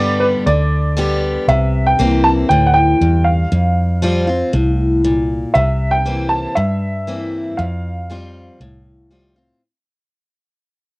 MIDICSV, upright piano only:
0, 0, Header, 1, 2, 480
1, 0, Start_track
1, 0, Key_signature, -1, "major"
1, 0, Tempo, 508906
1, 1399, Time_signature, 4, 2, 24, 8
1, 10367, End_track
2, 0, Start_track
2, 0, Title_t, "Upright piano"
2, 0, Program_c, 0, 0
2, 0, Note_on_c, 0, 74, 97
2, 188, Note_on_c, 0, 71, 80
2, 208, Note_off_c, 0, 74, 0
2, 244, Note_off_c, 0, 71, 0
2, 437, Note_on_c, 0, 74, 78
2, 1120, Note_off_c, 0, 74, 0
2, 1402, Note_on_c, 0, 76, 77
2, 1735, Note_off_c, 0, 76, 0
2, 1760, Note_on_c, 0, 79, 92
2, 2111, Note_on_c, 0, 81, 98
2, 2130, Note_off_c, 0, 79, 0
2, 2165, Note_off_c, 0, 81, 0
2, 2347, Note_on_c, 0, 79, 99
2, 2513, Note_on_c, 0, 78, 72
2, 2532, Note_off_c, 0, 79, 0
2, 2582, Note_on_c, 0, 79, 100
2, 2589, Note_off_c, 0, 78, 0
2, 3060, Note_on_c, 0, 77, 75
2, 3084, Note_off_c, 0, 79, 0
2, 4711, Note_off_c, 0, 77, 0
2, 5224, Note_on_c, 0, 76, 83
2, 5565, Note_off_c, 0, 76, 0
2, 5576, Note_on_c, 0, 79, 93
2, 5933, Note_on_c, 0, 81, 93
2, 5957, Note_off_c, 0, 79, 0
2, 6181, Note_on_c, 0, 76, 82
2, 6192, Note_off_c, 0, 81, 0
2, 7142, Note_on_c, 0, 77, 73
2, 7178, Note_off_c, 0, 76, 0
2, 8551, Note_off_c, 0, 77, 0
2, 10367, End_track
0, 0, End_of_file